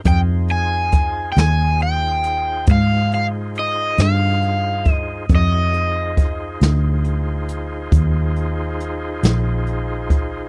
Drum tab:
HH |xxxxxxxxxxxx|xxxxxxxxxxxx|
SD |---o-----o--|---o-----o--|
BD |o-o---o----o|o-o---o----o|